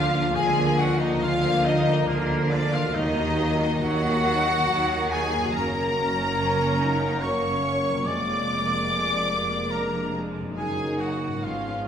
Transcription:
Already playing: D2 D3 F3 A#3 D4 F4 A#4 F5
0.13 D3 A#3 D4
0.22 A#3
0.27 F4
0.31 G#4 A#4 G#5
0.35 D2 D3 G#3 A#3 F4 G#5
0.58 A#3 D4
0.78 G#3 F4 F#4 F#5
1.00 A#3 D4 D#4 D#5
1.21 D2 D3 G#3 F4 F5
1.43 A#3 D4
1.63 G#3 D#4 F4 D#5
1.86 A#3 D4
2.06 D2 D3 G#3 A#3 F4 A#4
2.29 A#3 D4
2.49 G#3 D4 F4 D5
2.72 A#3 D4 F4 F5
2.77 D#3
2.82 A#3 F#4
2.90 F#3 D#4 A#4 D#5
2.95 D#2 D#3 F#3 D#4 D#5
3.17 A#3 F#4
3.38 F#3 D#4
3.61 A#3 F#4
3.81 D#2 D#3 F#3 D#4 F#4 F#5
4.04 A#3 F#4
4.25 F#3 D#4
4.47 A#3 F#4
4.67 D#2 D#3 F#3 D#4
4.90 A#3 F#4
5.11 F#3 D#4 G#4 G#5
5.33 F#2 A#3 F#4
5.41 A#3
5.45 F#4
5.50 A#4
5.54 F#1 F#2 F#3 A#3 C#4 A#4 A#5
5.98 C#4
6.39 A#3
6.80 D#4
7.21 A#3 C#4 C#5 C#6
7.65 A#3
7.88 F2
7.92 A#3
7.97 G#4
8.01 G#3 A#4 D6
8.05 F1 F2 G#3 A#3 D5 D6
8.88 G#3
9.29 A#3
9.71 A#3 D4 A#4 A#5
10.13 G#3
10.40 F#2
10.44 A#3
10.49 D#4
10.53 F#1 F#3 A#3 D#4 G#4 A#4
10.57 F#2 D#3 G#4 G#5
10.99 F#4 F#5
11.25 G#2
11.30 G#3
11.34 F4
11.38 F3 B4
11.42 G#1 G#2 G#3 B3 C#4 F4 F5
11.85 D#4

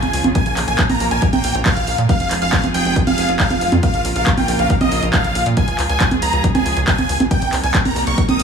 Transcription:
Already playing: C#3 F3 G#3 F4 G#4 G#5
0.03 C#2, closed hi-hat, high conga
0.13 C#2, open hi-hat
0.24 G#1, closed hi-hat, high conga
0.35 F3 A#3 A#4 G#5, kick, closed hi-hat
0.46 A#1, closed hi-hat
0.57 A#1, clap, open hi-hat
0.68 A#1 G#5, closed hi-hat
0.79 kick, clap, closed hi-hat
0.89 A#1 A#5, open hi-hat, high conga
1.00 A#1, open hi-hat
1.11 A#1 G#5, closed hi-hat
1.22 kick, closed hi-hat
1.33 A#1 G5, closed hi-hat, high conga
1.44 A#1, open hi-hat
1.55 A#1, closed hi-hat
1.66 F5, kick, clap, closed hi-hat
1.76 A#1, closed hi-hat
1.87 A#1, open hi-hat
1.98 A#2, closed hi-hat
2.09 C3 G#3 F4 G#4 F5, kick, closed hi-hat
2.20 F1, closed hi-hat
2.31 F1, clap, open hi-hat
2.42 F1 F5, closed hi-hat
2.53 kick, clap, closed hi-hat
2.63 F1, closed hi-hat, high conga
2.74 F1 G5, open hi-hat
2.85 F1, closed hi-hat
2.96 kick, closed hi-hat
3.07 F1 F5, closed hi-hat, high conga
3.18 F1, open hi-hat
3.29 F1, closed hi-hat
3.40 F5, kick, clap, closed hi-hat
3.50 F1, closed hi-hat, high conga
3.61 F1, open hi-hat
3.72 F2, closed hi-hat, high conga
3.83 C#3 A#3 A#4 F5, kick, closed hi-hat
3.94 A#1, closed hi-hat
4.05 A#1, open hi-hat
4.16 A#1 F5, closed hi-hat
4.27 kick, clap, closed hi-hat
4.37 A#1 G5, open hi-hat, high conga
4.48 A#1, open hi-hat
4.59 A#1 F5, closed hi-hat
4.70 kick, closed hi-hat
4.81 A#1 D#5, closed hi-hat, high conga
4.92 A#1, open hi-hat
5.03 A#1, closed hi-hat
5.13 F5, kick, clap, closed hi-hat
5.24 A#1, closed hi-hat
5.35 A#1, open hi-hat
5.46 A#2, closed hi-hat
5.57 C#3 G#3 G#4 G#5, kick, closed hi-hat
5.68 C#2, closed hi-hat
5.79 C#2, clap, open hi-hat
5.89 C#2 G#5, closed hi-hat
6.00 kick, clap, closed hi-hat
6.11 C#2, closed hi-hat, high conga
6.22 C#2 A#5, open hi-hat
6.33 C#2, closed hi-hat
6.44 kick, closed hi-hat
6.55 C#2 G#5, closed hi-hat, high conga
6.66 C#2, open hi-hat
6.77 C#2, closed hi-hat
6.87 G#5, kick, clap, closed hi-hat
6.98 C#2, closed hi-hat, high conga
7.09 C#2, open hi-hat
7.20 G#1, closed hi-hat, high conga
7.31 C3 G3 A#3 D#4 A#4 G5, kick, closed hi-hat
7.42 C2, closed hi-hat
7.53 C2, clap, open hi-hat
7.63 C2 G#5, closed hi-hat
7.74 kick, clap, closed hi-hat
7.85 C2 A#5, open hi-hat, high conga
7.96 C2, open hi-hat
8.07 C2 C#6, closed hi-hat
8.18 kick, closed hi-hat
8.29 C2 D#6, closed hi-hat, high conga
8.39 G1, open hi-hat

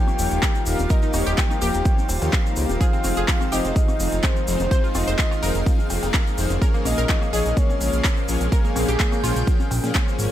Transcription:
Already playing: D#3 G3 A#3 F4 A#4 F5 G5
0.08 high conga, high woodblock, shaker
0.19 D#1 F3 A#3 D#4 G4 C#5, open hi-hat, shaker
0.31 D#1, closed hi-hat, shaker
0.43 F3 A#3 D#4 G4 A#4, kick, clap, closed hi-hat, high conga, shaker
0.55 shaker
0.66 D#1 F3 A#3 D#4 G4 A#4 F5, open hi-hat, shaker
0.79 D#1, closed hi-hat, high conga, shaker
0.90 F3 A#3 C4 D#4 G4 A#4 D#5, kick, closed hi-hat, shaker
1.02 D#4, shaker
1.13 D#1 F3 A#3 D#4 G4 C#5, open hi-hat, cowbell, high conga, high woodblock, shaker
1.26 D#1 G4, closed hi-hat, shaker
1.38 F3 A#3 D#4 G4 A#4 G5, kick, clap, closed hi-hat, shaker
1.50 D#4, high conga, high woodblock, shaker
1.62 D#1 F3 A#3 D#4 G4 A#4, open hi-hat, shaker
1.74 D#1, closed hi-hat, shaker
1.85 F3 A#3 D#4 G4 C#5, kick, closed hi-hat, shaker
1.98 high conga, shaker
2.09 D#1, open hi-hat, cowbell, shaker
2.22 D#2 F3 A#3 D#4 G4 C#5, closed hi-hat, cowbell, shaker
2.33 F3 A#3 D#4 G4 A#4, kick, clap, closed hi-hat, high conga, shaker
2.46 F3 A#3 D#4 G4 A#4, shaker
2.56 C#2 F3 A#3 D#4 G4 A#4, open hi-hat, shaker
2.69 D#1, closed hi-hat, high conga, shaker
2.81 D#3 F3 G#3 C4 D#4 G#4 C5 F5, kick, closed hi-hat, shaker
2.93 C4, shaker
3.04 F1 F3 C4 D#4 G#4 F5, open hi-hat, high conga, high woodblock, shaker
3.16 F1 G#4, closed hi-hat, shaker
3.28 F3 C4 D#4 G#4 C5, kick, clap, closed hi-hat, shaker
3.41 C4, high conga, high woodblock, shaker
3.52 F1 F3 C4 D#4 G4 G#4 C5 D#5, open hi-hat, shaker
3.65 F1, closed hi-hat, shaker
3.76 F3 C4 D#4 G#4 D#5 F5, kick, closed hi-hat, shaker
3.88 high conga, high woodblock, shaker
4.00 F1 F3 C4 D#4 G#4 F5, open hi-hat, shaker
4.12 F1, closed hi-hat, shaker
4.23 F3 C4 D#4 G#4 A#4 C5, kick, clap, closed hi-hat, high conga, shaker
4.36 shaker
4.47 F1 F3 C4 D#4 G#4 C5, open hi-hat, shaker
4.60 F1, closed hi-hat, high conga, shaker
4.71 F3 A#3 C4 D#4 G#4 C5, kick, closed hi-hat, shaker
4.84 F4, shaker
4.95 F1 F3 C4 D#4 F4 G#4 D#5 F5, open hi-hat, cowbell, high conga, high woodblock, shaker
5.07 F1 C5, closed hi-hat, shaker
5.19 F3 C4 D#4 F4 G#4 C5, kick, clap, closed hi-hat, shaker
5.31 F4, high conga, high woodblock, shaker
5.42 F1 F3 C4 D#4 G#4 A#4 C5, open hi-hat, shaker
5.55 F1, closed hi-hat, shaker
5.66 F3 C4 D#4 G#4 F5, kick, closed hi-hat, shaker
5.79 high conga, shaker
5.90 F1 F3 C4 D#4 G#4 F5, open hi-hat, cowbell, shaker
6.03 F1, closed hi-hat, cowbell, shaker
6.14 F3 C4 D#4 G#4 A#4, kick, clap, closed hi-hat, high conga, shaker
6.27 shaker
6.38 F1 F3 C4 D#4 G#4 C5, open hi-hat, shaker
6.50 F1, closed hi-hat, high conga, shaker
6.62 C#3 F3 A#3 C#4 G#4 A#4 C#5, kick, closed hi-hat, shaker
6.74 A#3, shaker
6.85 A#1 F3 A#3 C#4 G#4 D#5 F5, open hi-hat, high conga, high woodblock, shaker
6.98 A#1 A#4, closed hi-hat, shaker
7.09 F3 A#3 C#4 G#4 C#5, kick, clap, closed hi-hat, shaker
7.22 A#3, high conga, high woodblock, shaker
7.33 A#1 F3 A#3 C#4 G#4 C#5 D#5, open hi-hat, shaker
7.46 A#1, closed hi-hat, shaker
7.57 F3 A#3 C#4 G#4 C#5 F5, kick, closed hi-hat, shaker
7.69 high conga, high woodblock, shaker
7.81 A#1 F3 A#3 C#4 G#4 F5, open hi-hat, shaker
7.92 A#1, closed hi-hat, shaker
8.04 F3 A#3 C#4 G#4 C5, kick, clap, closed hi-hat, high conga, shaker
8.17 shaker
8.28 A#1 F3 A#3 C#4 G#4 C#5, open hi-hat, shaker
8.41 A#1, closed hi-hat, high conga, shaker
8.52 F3 A#3 C#4 G#4 A#4 C#5 G5, kick, closed hi-hat, shaker
8.65 A#3, shaker
8.76 A#1 F3 A#3 C#4 G#4 F5, open hi-hat, cowbell, high conga, high woodblock, shaker
8.88 A#1 G4, closed hi-hat, shaker
9.00 F3 A#3 C#4 G#4 C#5, kick, clap, closed hi-hat, shaker
9.12 A#3, high conga, high woodblock, shaker
9.24 A#1 F3 A#3 C#4 F4 G#4 C#5, open hi-hat, shaker
9.36 A#1, closed hi-hat, shaker
9.47 F3 A#3 C#4 G#4 F5, kick, closed hi-hat, shaker
9.60 high conga, shaker
9.71 A#1, open hi-hat, cowbell, shaker
9.84 A#2 F3 A#3 C#4 G#4 F5, closed hi-hat, cowbell, shaker
9.95 F3 A#3 C#4 G#4 C#5, kick, clap, closed hi-hat, high conga, shaker
10.08 F3 A#3 C#4 G#4 C5, shaker
10.19 G#1 F3 A#3 C#4 G#4 C#5, open hi-hat, shaker

